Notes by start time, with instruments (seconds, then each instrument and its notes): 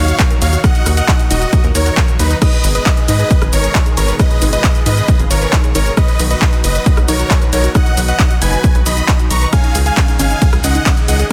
Already playing: analog synth bass D#2, analog synth pad A#2 D#3 F#3 D#4 F#4, supersaw synth C#5 F5, digital synth lead F5
0.08 synth arpeggio sound F#4, closed hi-hat, shaker
0.19 synth arpeggio sound A#4, kick, clap, closed hi-hat, shaker
0.31 synth arpeggio sound A#4, closed hi-hat, shaker
0.42 analog synth bass D#2, synth arpeggio sound D#4, supersaw synth C#5 F5, digital synth lead F5, open hi-hat, shaker
0.53 synth arpeggio sound F#4, closed hi-hat, shaker
0.64 synth arpeggio sound D#4, supersaw synth D#5 F#5, digital synth lead F#5, kick, cross-stick, closed hi-hat, shaker
0.75 synth arpeggio sound F#4, closed hi-hat, shaker
0.86 analog synth bass D#2, synth arpeggio sound A#4, cross-stick, open hi-hat, shaker
0.97 synth arpeggio sound A#4, supersaw synth D#5 F#5, digital synth lead F#5, closed hi-hat, shaker
1.08 synth arpeggio sound D#4, kick, clap, closed hi-hat, shaker
1.19 synth arpeggio sound F#4, closed hi-hat, shaker
1.31 analog synth bass D#1, synth arpeggio sound D#4, supersaw synth F#4 D#5, digital synth lead D#5, open hi-hat, shaker
1.42 synth arpeggio sound F#4, closed hi-hat, shaker
1.53 synth arpeggio sound A#4, kick, closed hi-hat, shaker
1.64 analog synth bass D#2, synth arpeggio sound A#4, closed hi-hat, shaker
1.75 analog synth bass D#2, synth arpeggio sound D#4, supersaw synth A#4 C#5, digital synth lead C#5, open hi-hat, shaker
1.86 synth arpeggio sound F#5, closed hi-hat, shaker
1.97 synth arpeggio sound A#4, kick, clap, closed hi-hat, shaker
2.08 synth arpeggio sound A#4, closed hi-hat, shaker
2.19 analog synth bass D#2, supersaw synth D#4 B4, digital synth lead B4, synth arpeggio sound A#5, open hi-hat, shaker
2.31 synth arpeggio sound D#5, closed hi-hat, shaker
2.42 analog synth pad B2 G#3 G#4, synth arpeggio sound D#4, supersaw synth B4 D#5, digital synth lead D#5, kick, cross-stick, closed hi-hat, crash, shaker
2.53 synth arpeggio sound G#4, closed hi-hat, shaker
2.64 analog synth bass G#1, synth arpeggio sound B4, open hi-hat, shaker
2.75 synth arpeggio sound B4, supersaw synth B4 D#5, digital synth lead D#5, closed hi-hat, shaker
2.86 synth arpeggio sound D#4, kick, clap, closed hi-hat, shaker
2.97 synth arpeggio sound G#4, closed hi-hat, shaker
3.08 analog synth bass G#2, synth arpeggio sound D#4, supersaw synth B4 D#5, digital synth lead D#5, open hi-hat, shaker
3.19 synth arpeggio sound G#4, closed hi-hat, shaker
3.31 synth arpeggio sound B4, kick, closed hi-hat, shaker
3.42 analog synth bass G#1, synth arpeggio sound B4, cross-stick, closed hi-hat, shaker
3.53 analog synth bass G#1, synth arpeggio sound D#4, supersaw synth A#4 C#5, digital synth lead C#5, open hi-hat, shaker
3.64 synth arpeggio sound G#4, closed hi-hat, shaker
3.75 synth arpeggio sound D#4, kick, clap, closed hi-hat, shaker
3.86 synth arpeggio sound G#4, closed hi-hat, shaker
3.97 analog synth bass G#1, supersaw synth A#4 C#5, synth arpeggio sound B4, digital synth lead C#5, open hi-hat, shaker
4.08 synth arpeggio sound B4, closed hi-hat, shaker
4.19 synth arpeggio sound D#4, analog synth pad F4, supersaw synth B4 D#5, digital synth lead D#5, kick, cross-stick, closed hi-hat, shaker
4.31 synth arpeggio sound G#4, closed hi-hat, shaker
4.42 analog synth bass G#1, synth arpeggio sound D#4, open hi-hat, shaker
4.53 synth arpeggio sound G#4, supersaw synth B4 D#5, digital synth lead D#5, closed hi-hat, shaker
4.64 kick, clap, closed hi-hat, shaker
4.75 synth arpeggio sound B4, closed hi-hat, shaker
4.86 analog synth bass G#2, synth arpeggio sound D#4, supersaw synth B4 D#5, digital synth lead D#5, open hi-hat, shaker
4.97 synth arpeggio sound G#4, closed hi-hat, shaker
5.08 synth arpeggio sound D#4, kick, closed hi-hat, shaker
5.19 analog synth bass G#1, synth arpeggio sound G#4, closed hi-hat, shaker
5.31 analog synth bass G#1, supersaw synth A#4 C#5, synth arpeggio sound B4, digital synth lead C#5, open hi-hat, shaker
5.42 synth arpeggio sound B4, closed hi-hat, shaker
5.53 synth arpeggio sound D#4, kick, clap, closed hi-hat, shaker
5.64 synth arpeggio sound G#4, closed hi-hat, shaker
5.75 analog synth bass G#1, synth arpeggio sound D#4, supersaw synth A#4 C#5, digital synth lead C#5, open hi-hat, shaker
5.86 synth arpeggio sound G#4, closed hi-hat, shaker
5.97 analog synth pad B2 F#3 D#4 F#4, synth arpeggio sound B4, supersaw synth B4 D#5, digital synth lead D#5, kick, cross-stick, closed hi-hat, shaker
6.08 synth arpeggio sound B4, closed hi-hat, shaker
6.19 analog synth bass B1, synth arpeggio sound D#4, open hi-hat, shaker
6.31 synth arpeggio sound F#4, supersaw synth B4 D#5, digital synth lead D#5, closed hi-hat, shaker
6.42 synth arpeggio sound D#4, kick, clap, closed hi-hat, shaker
6.53 synth arpeggio sound F#4, closed hi-hat, shaker
6.64 analog synth bass F#1, supersaw synth B4 D#5, synth arpeggio sound B4, digital synth lead D#5, open hi-hat, shaker
6.75 synth arpeggio sound B4, closed hi-hat, shaker
6.86 synth arpeggio sound D#4, kick, closed hi-hat, shaker
6.97 analog synth bass B1, synth arpeggio sound F#4, cross-stick, closed hi-hat, shaker
7.08 analog synth bass B1, synth arpeggio sound D#4, supersaw synth A#4 C#5, digital synth lead C#5, open hi-hat, shaker
7.20 synth arpeggio sound F#4, closed hi-hat, shaker
7.31 kick, clap, closed hi-hat, shaker
7.42 synth arpeggio sound B4, closed hi-hat, shaker
7.53 analog synth bass B1, synth arpeggio sound D#4, supersaw synth A#4 C#5, digital synth lead C#5, open hi-hat, shaker
7.64 synth arpeggio sound F#4, closed hi-hat, shaker
7.75 synth arpeggio sound D#4, supersaw synth D#5 F#5, digital synth lead F#5, kick, cross-stick, closed hi-hat, shaker
7.86 synth arpeggio sound F#4, closed hi-hat, shaker
7.97 analog synth bass B1, synth arpeggio sound B4, open hi-hat, shaker
8.08 synth arpeggio sound B4, supersaw synth D#5 F#5, digital synth lead F#5, closed hi-hat, shaker
8.19 synth arpeggio sound D#4, kick, clap, closed hi-hat, shaker
8.31 synth arpeggio sound F#4, closed hi-hat, shaker
8.42 analog synth bass F#1, synth arpeggio sound D#4, supersaw synth B4 G#5, digital synth lead G#5, open hi-hat, shaker
8.53 synth arpeggio sound F#4, closed hi-hat, shaker
8.64 synth arpeggio sound B4, kick, closed hi-hat, shaker
8.75 analog synth bass B1, synth arpeggio sound B4, closed hi-hat, shaker
8.86 analog synth bass B1, synth arpeggio sound D#4, supersaw synth D#5 B5, digital synth lead B5, open hi-hat, shaker
8.97 synth arpeggio sound F#4, closed hi-hat, shaker
9.08 synth arpeggio sound D#4, kick, clap, closed hi-hat, shaker
9.19 synth arpeggio sound F#4, closed hi-hat, shaker
9.31 analog synth bass B1, synth arpeggio sound B4, supersaw synth A#5 C#6, digital synth lead C#6, open hi-hat, shaker
9.42 synth arpeggio sound B4, closed hi-hat, shaker
9.53 analog synth pad C#3 D#3 G#3 G#4, synth arpeggio sound C#4, supersaw synth F5 G#5, digital synth lead G#5, kick, cross-stick, closed hi-hat, ride, shaker
9.64 synth arpeggio sound D#4, closed hi-hat, shaker
9.75 analog synth bass C#2, synth arpeggio sound G#4, open hi-hat, shaker
9.86 synth arpeggio sound G#4, supersaw synth F5 G#5, digital synth lead G#5, closed hi-hat, shaker
9.97 synth arpeggio sound C#4, kick, clap, closed hi-hat, ride, shaker
10.08 synth arpeggio sound D#4, closed hi-hat, shaker
10.19 analog synth bass G#1, synth arpeggio sound C#4, supersaw synth F5 G#5, digital synth lead G#5, open hi-hat, shaker
10.31 synth arpeggio sound D#4, closed hi-hat, shaker
10.42 synth arpeggio sound G#4, kick, closed hi-hat, ride, shaker
10.53 analog synth bass C#2, synth arpeggio sound G#4, cross-stick, closed hi-hat, shaker
10.64 analog synth bass C#2, synth arpeggio sound C#4, supersaw synth D#5 F#5, digital synth lead F#5, open hi-hat, shaker
10.75 synth arpeggio sound D#4, closed hi-hat, shaker
10.86 synth arpeggio sound C#4, kick, clap, closed hi-hat, ride, shaker
10.97 synth arpeggio sound D#4, closed hi-hat, shaker
11.08 analog synth bass C#2, synth arpeggio sound G#4, supersaw synth D#5 F#5, digital synth lead F#5, open hi-hat, shaker
11.19 synth arpeggio sound G#4, closed hi-hat, shaker